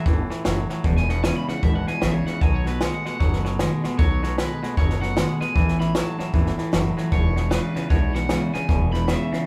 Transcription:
0.05 upright bass G1, clean electric guitar A2 E3, steel-string acoustic guitar E3 G3 C#4 E4, kick, snare
0.30 clean electric guitar A2 E3, steel-string acoustic guitar G3 C#4 E4, muted upright bass stroke, snare
0.44 upright bass F#1, clean electric guitar A2 F#3, steel-string acoustic guitar A2 E3 G3 C#4 E4, snare, hi-hat pedal
0.69 clean electric guitar A2 F#3, steel-string acoustic guitar G3 C#4 E4, muted upright bass stroke, snare
0.84 upright bass E1, clean electric guitar E2 B2, steel-string acoustic guitar E2 B2 E3 G#3 D4 E4, kick, snare
0.97 clean electric guitar G#5, snare
1.08 clean electric guitar E2 B2 F#5, steel-string acoustic guitar E3 G#3 D4 E4, snare
1.23 steel-string acoustic guitar E2 B2 E3 G#3 D4 E4, clean electric guitar E2 C#3 G#5, snare, hi-hat pedal
1.36 clean electric guitar B5
1.47 clean electric guitar E2 C#3 F#5, steel-string acoustic guitar E3 G#3 D4 E4, muted upright bass stroke, snare
1.62 upright bass G#1, clean electric guitar E2 B2 E5, steel-string acoustic guitar E3 G#3 D4 E4, kick, snare
1.75 clean electric guitar F#5
1.87 clean electric guitar E2 B2 G#5, steel-string acoustic guitar E3 G#3 D4 E4, muted upright bass stroke, snare
2.01 upright bass A1, steel-string acoustic guitar E2 B2 E3 G#3 D4 E4, clean electric guitar E2 C#3 E5, snare, hi-hat pedal
2.14 clean electric guitar C#5
2.25 clean electric guitar E2 C#3 F#5, steel-string acoustic guitar E3 G#3 D4 E4, muted upright bass stroke, snare
2.41 upright bass B1, steel-string acoustic guitar B2 D#3 A3 B3 F#4, clean electric guitar B2 F#3 G#5, kick, snare
2.54 clean electric guitar C#5
2.64 clean electric guitar B2 F#3 B4, steel-string acoustic guitar A3 B3 F#4, snare
2.80 steel-string acoustic guitar B2 D#3 A3 B3 F#4, clean electric guitar B2 G#3 C#5, snare, hi-hat pedal
2.94 clean electric guitar F#5
3.05 clean electric guitar B2 G#3 F#5, steel-string acoustic guitar A3 B3 F#4, muted upright bass stroke, snare
3.19 upright bass F#1, clean electric guitar B2 F#3, steel-string acoustic guitar D#3 A3 B3 F#4, kick, snare
3.33 snare
3.44 clean electric guitar B2 F#3, steel-string acoustic guitar A3 B3 F#4, snare
3.59 steel-string acoustic guitar B2 D#3 A3 B3 F#4, clean electric guitar B2 G#3, snare, hi-hat pedal
3.84 clean electric guitar B2 G#3, steel-string acoustic guitar A3 B3 F#4, muted upright bass stroke, snare
3.98 upright bass B1, steel-string acoustic guitar B2 D#3 A3 B3 F#4, clean electric guitar B2 F#3 C#5, kick, snare
4.23 clean electric guitar B2 F#3, steel-string acoustic guitar A3 B3 F#4, snare
4.38 clean electric guitar B2 G#3 B4, steel-string acoustic guitar B2 D#3 A3 B3 F#4, snare, hi-hat pedal
4.62 clean electric guitar B2 G#3, steel-string acoustic guitar A3 B3 F#4, muted upright bass stroke, snare
4.76 upright bass F#1, clean electric guitar B2 F#3 C#5, steel-string acoustic guitar D#3 A3 B3 F#4, kick, snare
4.90 snare
5.01 clean electric guitar B2 F#3 F#5, steel-string acoustic guitar A3 B3 F#4, snare
5.15 steel-string acoustic guitar B2 D#3 A3 B3 F#4, clean electric guitar B2 G#3, snare, hi-hat pedal
5.40 clean electric guitar B2 G#3 G#5, steel-string acoustic guitar A3 B3 F#4, muted upright bass stroke, snare
5.55 upright bass A1, steel-string acoustic guitar A2 E3 G3 C#4 E4, clean electric guitar A2 E3, kick, snare
5.68 snare
5.78 clean electric guitar A2 E3 B5, steel-string acoustic guitar G3 C#4 E4, snare
5.94 clean electric guitar A2 F#3 A5, steel-string acoustic guitar A2 E3 G3 C#4 E4, snare, hi-hat pedal
6.18 clean electric guitar A2 F#3, steel-string acoustic guitar G3 C#4 E4, muted upright bass stroke, snare
6.33 upright bass G1, clean electric guitar A2 E3, steel-string acoustic guitar E3 G3 C#4 E4, kick, snare
6.46 snare
6.57 clean electric guitar A2 E3, steel-string acoustic guitar G3 C#4 E4, muted upright bass stroke, snare
6.71 upright bass F#1, steel-string acoustic guitar A2 E3 G3 C#4 E4, clean electric guitar A2 F#3, snare, hi-hat pedal
6.96 clean electric guitar A2 F#3, steel-string acoustic guitar G3 C#4 E4, muted upright bass stroke, snare
7.11 upright bass E1, steel-string acoustic guitar E2 B2 E3 G#3 D4 E4, clean electric guitar E2 B2 C#5, kick, snare
7.35 clean electric guitar E2 B2, steel-string acoustic guitar E3 G#3 D4 E4, snare
7.50 steel-string acoustic guitar E2 B2 E3 G#3 D4 E4, clean electric guitar E2 C#3 B4, snare, hi-hat pedal
7.74 clean electric guitar E2 C#3, steel-string acoustic guitar E3 G#3 D4 E4, muted upright bass stroke, snare
7.89 upright bass B1, clean electric guitar E2 B2 C#5, steel-string acoustic guitar E3 G#3 D4 E4, kick, snare
8.13 clean electric guitar E2 B2 F#5, steel-string acoustic guitar E3 G#3 D4 E4, snare
8.28 steel-string acoustic guitar E2 B2 E3 G#3 D4 E4, clean electric guitar E2 C#3, snare, hi-hat pedal
8.52 clean electric guitar E2 C#3 G#5, steel-string acoustic guitar E3 G#3 D4 E4, muted upright bass stroke, snare
8.67 upright bass E1, steel-string acoustic guitar E2 B2 E3 G#3 D4 E4, clean electric guitar E2 B2, kick, snare
8.92 clean electric guitar E2 B2 B5, steel-string acoustic guitar E3 G#3 D4 E4, snare
9.07 steel-string acoustic guitar E2 B2 E3 G#3 D4 E4, clean electric guitar E2 C#3 E5, snare, hi-hat pedal
9.31 clean electric guitar E2 C#3, steel-string acoustic guitar E3 G#3 D4 E4, muted upright bass stroke, snare

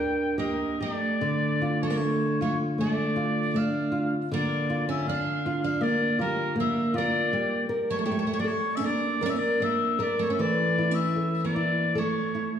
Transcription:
Already playing: upright bass D2, nylon-string guitar G3 A#4, twelve-string acoustic guitar D4, oboe G5
0.38 twelve-string acoustic guitar A#3, nylon-string guitar G4, oboe D#5
0.80 twelve-string acoustic guitar A#3, nylon-string guitar G4, oboe D#5
0.92 twelve-string acoustic guitar A3, oboe D5
1.21 nylon-string guitar D3
1.62 nylon-string guitar F4
1.82 twelve-string acoustic guitar A3, oboe C#5
1.88 twelve-string acoustic guitar A#3, oboe D5
1.96 twelve-string acoustic guitar A3, oboe C#5
2.01 nylon-string guitar D4
2.41 twelve-string acoustic guitar A3, nylon-string guitar F4, oboe C#5
2.78 nylon-string guitar A3, twelve-string acoustic guitar A3, oboe D5
3.16 nylon-string guitar F4
3.54 nylon-string guitar A3, twelve-string acoustic guitar D4, oboe F5
3.92 nylon-string guitar F4
4.31 nylon-string guitar D3, twelve-string acoustic guitar A#3, oboe D5
4.70 nylon-string guitar F4
4.89 twelve-string acoustic guitar C#4, oboe E5
5.07 nylon-string guitar D4, twelve-string acoustic guitar D4, oboe F5
5.46 nylon-string guitar F4
5.64 twelve-string acoustic guitar D4, oboe F5
5.81 nylon-string guitar A#3, twelve-string acoustic guitar A#3, oboe D5
6.19 twelve-string acoustic guitar G3, nylon-string guitar F4, oboe A#4
6.56 nylon-string guitar A#3
6.60 twelve-string acoustic guitar A#3, oboe E5
6.94 nylon-string guitar F4, oboe D5
6.98 twelve-string acoustic guitar A#3
7.33 nylon-string guitar G3
7.69 nylon-string guitar A#4
7.90 twelve-string acoustic guitar A3, oboe C#5
7.99 twelve-string acoustic guitar A3, oboe C#5
8.05 twelve-string acoustic guitar A3, nylon-string guitar G4, oboe C#5
8.11 twelve-string acoustic guitar A3, oboe C#5
8.19 twelve-string acoustic guitar A3, oboe C#5
8.27 twelve-string acoustic guitar A3, oboe C#5
8.33 twelve-string acoustic guitar A3, oboe C#5
8.39 twelve-string acoustic guitar A#3, oboe D5
8.44 twelve-string acoustic guitar A3, nylon-string guitar A4, oboe C#5
8.76 twelve-string acoustic guitar C#4, oboe E5
8.80 twelve-string acoustic guitar A#3, nylon-string guitar D4
8.85 oboe D5
9.21 twelve-string acoustic guitar A#3, nylon-string guitar A#4, oboe D5
9.26 twelve-string acoustic guitar C#4, oboe E5
9.36 twelve-string acoustic guitar A#3, oboe D5
9.60 twelve-string acoustic guitar A#3, nylon-string guitar D4, oboe E5
9.99 twelve-string acoustic guitar A#3, nylon-string guitar A#4, oboe D5
10.19 twelve-string acoustic guitar A3, oboe C#5
10.30 twelve-string acoustic guitar C#4, oboe E5
10.39 nylon-string guitar E3, twelve-string acoustic guitar A3, oboe D5
10.78 nylon-string guitar E4
10.91 twelve-string acoustic guitar C#4, oboe E5
11.16 nylon-string guitar A4
11.44 twelve-string acoustic guitar A#3, oboe D5
11.56 nylon-string guitar E4
11.95 twelve-string acoustic guitar A3, nylon-string guitar A4, oboe C#5
12.35 nylon-string guitar E4

